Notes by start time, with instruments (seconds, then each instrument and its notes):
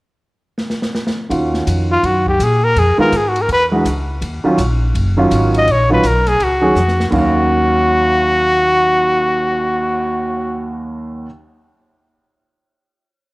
0.58 snare
0.70 snare
0.82 snare
0.95 snare
1.07 snare
1.29 upright bass D#2, grand piano D#3 C#4 F4 F#4, kick, ride
1.54 snare
1.67 upright bass F2, kick, hi-hat pedal, ride
1.92 trumpet F4
2.03 upright bass F#2, trumpet F#4, kick, ride
2.26 trumpet G4, kick
2.39 upright bass A#2, trumpet G#4, kick, hi-hat pedal, ride
2.64 trumpet A#4
2.76 upright bass F2, trumpet G#4, kick, ride
2.98 grand piano D#3 G#3 B3 F4, trumpet A#4, muted upright bass stroke
3.12 upright bass G#2, kick, hi-hat pedal, ride
3.17 trumpet G#4
3.28 trumpet F#4
3.36 ride
3.41 trumpet A#4
3.48 upright bass E2, kick, ride
3.53 trumpet B4
3.71 grand piano E3 G#3 D4 F#4
3.85 upright bass C#2, kick, hi-hat pedal, ride
4.21 upright bass D#2, kick, ride
4.44 grand piano D#3 F#3 C#4 F4, muted upright bass stroke
4.58 upright bass A#1, kick, hi-hat pedal, ride
4.95 upright bass F#1, kick, ride
5.17 grand piano D#3 F#3 C#4 F4
5.31 upright bass G#1, kick, hi-hat pedal, ride
5.54 trumpet D#5, ride
5.67 upright bass A#1, kick, ride
5.71 trumpet C#5
5.89 grand piano D#3 F#3 C#4 F4, trumpet B4
6.03 upright bass B1, trumpet A#4, kick, hi-hat pedal, ride
6.26 trumpet G#4, snare, ride
6.40 upright bass C#2, trumpet F#4, kick, ride
6.61 grand piano D#3 F#3 C#4 G#4
6.75 upright bass F2, snare, hi-hat pedal
6.88 snare
7.00 snare
7.10 grand piano D#2 D#3 F#3 C#4 F5, upright bass D#2, trumpet F#4, kick, crash
7.35 cymbal swell